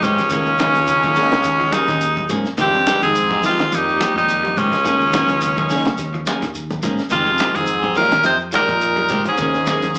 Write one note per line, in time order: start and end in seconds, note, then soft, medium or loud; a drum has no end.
0.00 0.18 G#2 loud
0.00 0.21 D#3 medium
0.00 0.13 G3 medium
0.00 0.21 G#3 medium
0.00 0.21 C4 medium
0.00 1.75 C#4 loud
0.00 0.22 G4 medium
0.00 kick medium
0.00 closed hi-hat soft
0.00 low conga medium
0.00 shekere medium
0.05 1.74 C#2 medium
0.05 1.75 G#3 medium
0.18 0.29 F3 medium
0.18 snare soft
0.18 closed hi-hat soft
0.18 shekere soft
0.30 0.58 D#2 medium
0.30 0.49 D#3 medium
0.30 0.54 D#3 medium
0.30 0.50 A#3 medium
0.30 0.50 C#4 medium
0.30 0.50 G#4 medium
0.30 kick medium
0.30 closed hi-hat medium
0.30 low conga medium
0.30 shekere loud
0.46 shekere soft
0.59 0.78 D#3 medium
0.59 0.82 D#3 medium
0.59 0.78 A#3 medium
0.59 0.78 C#4 medium
0.59 muted clean electric guitar stroke medium
0.59 kick medium
0.59 snare medium
0.59 closed hi-hat medium
0.59 high conga loud
0.59 shekere medium
0.74 1.18 D#2 medium
0.74 snare soft
0.74 closed hi-hat medium
0.74 shekere soft
0.87 1.01 C#3 medium
0.87 closed hi-hat medium
0.87 shekere loud
1.03 1.26 D#3 medium
1.03 1.15 A#3 soft
1.03 1.15 C#4 soft
1.03 1.16 G#4 medium
1.03 kick medium
1.03 high conga medium
1.03 shekere soft
1.16 1.34 D#3 medium
1.16 1.31 D#3 medium
1.16 1.35 A#3 medium
1.16 1.35 C#4 medium
1.16 1.35 G#4 medium
1.16 open hi-hat medium
1.16 shekere medium
1.31 snare medium
1.31 closed hi-hat medium
1.31 low conga medium
1.31 shekere soft
1.44 1.71 D#2 loud
1.44 closed hi-hat medium
1.44 shekere medium
1.60 1.82 F3 medium
1.60 shekere soft
1.72 2.30 D#2 medium
1.72 1.89 D#3 medium
1.72 2.31 G#3 medium
1.72 1.88 A#3 medium
1.72 1.87 C#4 medium
1.72 2.30 D#4 loud
1.72 1.87 G#4 medium
1.72 closed hi-hat medium
1.72 high conga loud
1.72 shekere medium
1.88 2.27 D#2 loud
1.88 2.11 D#3 medium
1.88 2.05 A#3 soft
1.88 2.05 C#4 soft
1.88 2.04 G#4 soft
1.88 kick medium
1.88 snare soft
1.88 closed hi-hat medium
1.88 shekere soft
2.01 closed hi-hat medium
2.01 shekere medium
2.17 kick medium
2.17 high conga medium
2.17 shekere soft
2.29 2.44 G#2 loud
2.29 2.48 D#3 medium
2.29 2.53 F3 medium
2.29 2.48 A#3 medium
2.29 2.48 C#4 medium
2.29 2.49 G#4 medium
2.29 kick medium
2.29 closed hi-hat medium
2.29 high conga medium
2.29 low conga medium
2.29 shekere medium
2.45 snare soft
2.45 shekere soft
2.58 2.85 F2 loud
2.58 3.00 G2 medium
2.58 2.76 D#3 medium
2.58 2.71 D#3 medium
2.58 2.76 G#3 medium
2.58 2.77 C4 loud
2.58 2.77 G4 medium
2.58 kick medium
2.58 closed hi-hat medium
2.58 low conga medium
2.58 shekere medium
2.62 3.01 C4 medium
2.62 3.01 G4 loud
2.74 2.96 C3 medium
2.74 shekere soft
2.86 3.05 D#3 medium
2.86 3.05 G#3 medium
2.86 3.05 C4 medium
2.86 3.06 G4 medium
2.86 snare medium
2.86 closed hi-hat soft
2.86 high conga loud
2.86 shekere medium
3.02 3.45 F2 medium
3.02 3.41 G#2 medium
3.02 3.25 D#3 medium
3.02 3.42 C4 medium
3.02 3.41 G#4 loud
3.02 snare soft
3.02 closed hi-hat medium
3.02 shekere soft
3.15 closed hi-hat medium
3.15 shekere loud
3.30 3.43 G#3 soft
3.30 3.44 C4 soft
3.30 3.44 G4 soft
3.30 kick medium
3.30 high conga medium
3.30 shekere soft
3.43 3.70 F2 medium
3.43 3.62 D#3 medium
3.43 3.58 F3 medium
3.43 3.62 G#3 medium
3.43 3.75 G#3 medium
3.43 3.62 C4 medium
3.43 3.76 F4 loud
3.43 3.62 G4 medium
3.43 open hi-hat medium
3.43 shekere medium
3.59 3.70 D#3 medium
3.59 snare medium
3.59 closed hi-hat medium
3.59 shekere soft
3.72 4.14 D#2 medium
3.72 3.98 F2 medium
3.72 3.94 F3 medium
3.72 4.16 G3 medium
3.72 4.17 D#4 medium
3.72 closed hi-hat medium
3.72 shekere medium
3.89 shekere soft
4.00 4.16 D#3 medium
4.00 4.22 F3 medium
4.00 4.15 G#3 medium
4.00 4.15 C4 medium
4.00 4.15 G4 medium
4.00 snare soft
4.00 closed hi-hat medium
4.00 high conga loud
4.00 shekere medium
4.15 4.54 D#2 medium
4.15 4.54 F2 loud
4.15 4.59 G3 medium
4.15 4.32 G#3 soft
4.15 4.32 C4 soft
4.15 4.60 D#4 loud
4.15 4.32 G4 soft
4.15 kick medium
4.15 snare soft
4.15 shekere soft
4.29 closed hi-hat medium
4.29 shekere medium
4.43 4.66 G3 medium
4.43 high conga medium
4.43 shekere soft
4.56 6.27 C#2 medium
4.56 4.72 G#2 medium
4.56 4.75 D#3 medium
4.56 4.75 G#3 medium
4.56 6.27 G#3 medium
4.56 4.76 C4 medium
4.56 6.28 C#4 loud
4.56 4.76 G4 medium
4.56 kick medium
4.56 closed hi-hat soft
4.56 low conga medium
4.56 shekere medium
4.72 4.82 F3 medium
4.72 snare soft
4.72 closed hi-hat soft
4.72 shekere soft
4.84 5.12 D#2 medium
4.84 5.03 D#3 medium
4.84 5.07 D#3 medium
4.84 5.03 A#3 medium
4.84 5.03 C#4 medium
4.84 5.03 G#4 medium
4.84 kick loud
4.84 closed hi-hat medium
4.84 low conga medium
4.84 shekere medium
5.01 shekere soft
5.13 5.31 D#3 medium
5.13 5.36 D#3 medium
5.13 5.32 A#3 medium
5.13 5.32 C#4 medium
5.13 5.32 G#4 medium
5.13 kick medium
5.13 snare medium
5.13 closed hi-hat soft
5.13 high conga loud
5.13 shekere medium
5.29 5.72 D#2 medium
5.29 closed hi-hat medium
5.29 high conga medium
5.29 shekere soft
5.41 5.54 C#3 medium
5.41 closed hi-hat medium
5.41 shekere medium
5.56 5.79 D#3 medium
5.56 5.68 A#3 soft
5.56 5.69 C#4 soft
5.56 5.69 G#4 soft
5.56 kick medium
5.56 high conga medium
5.56 shekere soft
5.69 5.88 D#3 medium
5.69 5.85 D#3 medium
5.69 5.88 A#3 medium
5.69 5.88 C#4 medium
5.69 5.88 G#4 medium
5.69 snare soft
5.69 open hi-hat medium
5.69 shekere medium
5.85 snare medium
5.85 closed hi-hat medium
5.85 high conga medium
5.85 low conga medium
5.85 shekere soft
5.98 6.25 D#2 loud
5.98 snare soft
5.98 closed hi-hat medium
5.98 shekere medium
6.14 6.36 F3 medium
6.14 shekere soft
6.26 6.45 D#3 medium
6.26 6.45 A#3 medium
6.26 6.45 C#4 medium
6.26 6.46 G#4 medium
6.26 snare soft
6.26 closed hi-hat soft
6.26 high conga loud
6.26 shekere medium
6.42 6.81 D#2 loud
6.42 6.65 D#3 medium
6.42 kick medium
6.42 snare soft
6.42 closed hi-hat medium
6.42 shekere soft
6.55 closed hi-hat medium
6.55 shekere medium
6.71 kick medium
6.71 high conga medium
6.71 shekere soft
6.83 6.98 G#2 loud
6.83 7.01 D#3 medium
6.83 7.05 F3 medium
6.83 7.01 A#3 medium
6.83 7.02 C#4 medium
6.83 7.02 G#4 medium
6.83 kick medium
6.83 closed hi-hat medium
6.83 low conga medium
6.83 shekere medium
6.98 snare soft
6.98 shekere soft
7.10 7.52 F2 medium
7.10 7.38 F2 loud
7.10 7.29 D#3 medium
7.10 7.24 D#3 loud
7.10 7.29 G#3 medium
7.10 7.56 G#3 medium
7.10 7.30 C4 medium
7.10 7.58 F4 loud
7.10 7.30 G4 medium
7.10 kick loud
7.10 closed hi-hat medium
7.10 low conga medium
7.10 shekere medium
7.26 7.49 C3 medium
7.26 shekere soft
7.38 7.58 D#3 medium
7.38 7.58 G#3 medium
7.38 7.58 C4 medium
7.38 7.58 G4 medium
7.38 snare medium
7.38 closed hi-hat soft
7.38 high conga loud
7.38 shekere medium
7.55 7.98 F2 medium
7.55 7.97 G#2 medium
7.55 7.78 D#3 medium
7.55 7.95 C4 medium
7.55 7.97 G#4 loud
7.55 snare soft
7.55 closed hi-hat medium
7.55 high conga medium
7.55 shekere soft
7.67 closed hi-hat medium
7.67 shekere loud
7.82 7.95 C4 soft
7.82 7.95 G4 medium
7.82 muted clean electric guitar stroke soft
7.82 kick medium
7.82 high conga medium
7.82 shekere soft
7.95 8.23 A#2 medium
7.95 8.14 D#3 medium
7.95 8.09 F3 medium
7.95 8.12 F3 medium
7.95 8.14 G#3 medium
7.95 8.15 C4 medium
7.95 8.23 C#4 medium
7.95 8.15 G4 medium
7.95 8.24 A#4 loud
7.95 open hi-hat medium
7.95 shekere medium
8.11 8.22 D#3 medium
8.11 snare medium
8.11 closed hi-hat medium
8.11 high conga medium
8.11 shekere soft
8.23 8.52 F2 loud
8.23 8.37 C3 medium
8.23 8.47 F3 medium
8.23 8.37 D#4 medium
8.23 8.39 C5 loud
8.23 closed hi-hat medium
8.23 shekere medium
8.39 shekere soft
8.52 9.22 A#2 medium
8.52 8.71 D#3 medium
8.52 8.75 F3 medium
8.52 8.72 G#3 medium
8.52 8.72 C4 medium
8.52 9.22 D#4 medium
8.52 8.72 G4 medium
8.52 9.23 A#4 loud
8.52 closed hi-hat medium
8.52 high conga loud
8.52 shekere medium
8.68 9.08 F2 loud
8.68 kick medium
8.68 shekere soft
8.81 closed hi-hat medium
8.81 shekere medium
8.96 9.19 G3 medium
8.96 high conga medium
8.96 shekere soft
9.09 9.25 G#2 medium
9.09 9.28 D#3 medium
9.09 9.28 G#3 medium
9.09 9.29 C4 medium
9.09 9.29 G4 medium
9.09 kick medium
9.09 closed hi-hat soft
9.09 low conga medium
9.09 shekere medium
9.25 9.99 G#2 medium
9.25 9.36 F3 medium
9.25 9.99 C#4 medium
9.25 closed hi-hat medium
9.25 shekere soft
9.29 9.99 G#4 medium
9.38 9.65 D#2 loud
9.38 9.60 D#3 medium
9.38 9.57 D#3 medium
9.38 9.57 A#3 medium
9.38 9.57 C#4 medium
9.38 9.57 G#4 medium
9.38 kick medium
9.38 closed hi-hat medium
9.38 low conga medium
9.38 shekere loud
9.54 snare soft
9.54 shekere soft
9.66 9.85 D#3 medium
9.66 9.89 D#3 medium
9.66 9.85 A#3 medium
9.66 9.85 C#4 medium
9.66 9.86 G#4 medium
9.66 kick medium
9.66 snare medium
9.66 closed hi-hat medium
9.66 high conga loud
9.66 shekere medium
9.82 9.99 D#2 medium
9.82 snare soft
9.82 closed hi-hat medium
9.82 high conga medium
9.82 shekere soft
9.95 9.99 C#3 medium
9.95 closed hi-hat medium
9.95 shekere medium